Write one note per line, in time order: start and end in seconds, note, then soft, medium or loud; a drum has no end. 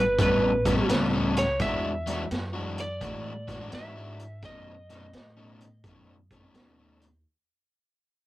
0.00 0.17 G1 medium
0.00 0.20 B4 medium
0.19 0.87 A1 medium
0.19 0.49 A2 medium
0.19 0.49 G3 loud
0.19 0.50 B3 loud
0.19 0.50 C#4 loud
0.19 0.87 B4 medium
0.19 kick medium
0.19 closed hi-hat medium
0.65 0.77 A2 medium
0.65 0.77 G3 medium
0.65 0.76 B3 medium
0.65 0.76 C#4 medium
0.65 kick medium
0.65 snare soft
0.65 closed hi-hat medium
0.77 0.89 A2 medium
0.77 0.89 G3 medium
0.77 0.89 B3 medium
0.77 0.89 C#4 medium
0.89 1.58 C#2 medium
0.89 1.13 A2 medium
0.89 1.13 G3 medium
0.89 1.12 B3 medium
0.89 1.12 C#4 medium
0.89 snare loud
0.89 closed hi-hat medium
1.13 1.41 A2 medium
1.13 1.40 G3 medium
1.13 1.40 B3 medium
1.13 1.40 C#4 medium
1.36 1.61 C#5 medium
1.36 snare soft
1.36 closed hi-hat medium
1.60 2.29 E2 medium
1.60 1.90 E3 medium
1.60 1.91 G#3 medium
1.60 1.91 D4 medium
1.60 1.91 F#4 medium
1.60 2.28 E5 loud
1.60 kick loud
1.60 snare soft
1.60 closed hi-hat medium
2.06 2.22 E3 medium
2.06 2.23 G#3 medium
2.06 2.23 D4 medium
2.06 2.23 F#4 loud
2.06 snare soft
2.06 closed hi-hat medium
2.31 2.99 F#2 medium
2.31 snare loud
2.31 closed hi-hat medium
2.53 2.81 E3 medium
2.53 2.81 G#3 medium
2.53 2.81 D4 medium
2.53 2.81 F#4 medium
2.78 3.69 D5 medium
2.78 closed hi-hat medium
3.01 3.70 A2 medium
3.01 3.31 E3 medium
3.01 3.32 G#3 medium
3.01 3.32 D4 loud
3.01 3.32 F#4 medium
3.01 kick medium
3.01 closed hi-hat medium
3.48 3.60 E3 medium
3.48 3.60 G#3 medium
3.48 3.59 D4 medium
3.48 3.59 F#4 medium
3.48 kick medium
3.48 snare soft
3.48 closed hi-hat medium
3.60 3.71 E3 medium
3.60 3.71 G#3 medium
3.60 3.71 D4 medium
3.60 3.72 F#4 medium
3.72 4.41 G#2 medium
3.72 3.95 E3 medium
3.72 3.95 G#3 medium
3.72 3.95 D4 medium
3.72 3.94 F#4 medium
3.72 4.45 E5 loud
3.72 snare loud
3.72 closed hi-hat medium
3.96 4.23 E3 medium
3.96 4.23 G#3 medium
3.96 4.22 D4 medium
3.96 4.22 F#4 medium
4.19 closed hi-hat medium
4.43 5.11 F#2 medium
4.43 4.73 B2 medium
4.43 4.73 D#3 medium
4.43 4.73 A3 medium
4.43 4.74 C#4 medium
4.43 6.52 D#5 medium
4.43 kick medium
4.43 snare soft
4.43 closed hi-hat medium
4.90 5.05 B2 medium
4.90 5.05 D#3 medium
4.90 5.05 A3 medium
4.90 5.06 C#4 medium
4.90 snare soft
4.90 closed hi-hat medium
5.13 5.82 A2 medium
5.13 snare medium
5.13 closed hi-hat medium
5.37 5.64 B2 medium
5.37 5.64 D#3 medium
5.37 5.64 A3 medium
5.37 5.64 C#4 medium
5.60 closed hi-hat medium
5.84 6.52 F#2 medium
5.84 6.15 B2 medium
5.84 6.15 D#3 loud
5.84 6.15 A3 medium
5.84 6.15 C#4 medium
5.84 kick loud
5.84 closed hi-hat medium
6.31 6.43 B2 medium
6.31 6.43 D#3 medium
6.31 6.43 A3 medium
6.31 6.43 C#4 medium
6.31 kick medium
6.31 closed hi-hat medium
6.44 6.54 B2 medium
6.44 6.54 D#3 medium
6.44 6.55 A3 medium
6.44 6.55 C#4 medium
6.54 7.23 D#2 medium
6.54 6.78 B2 medium
6.54 6.78 D#3 medium
6.54 6.78 A3 medium
6.54 6.78 C#4 medium
6.54 snare loud
6.54 closed hi-hat medium
6.79 7.06 B2 medium
6.79 7.06 D#3 medium
6.79 7.05 A3 medium
6.79 7.05 C#4 medium
7.01 closed hi-hat medium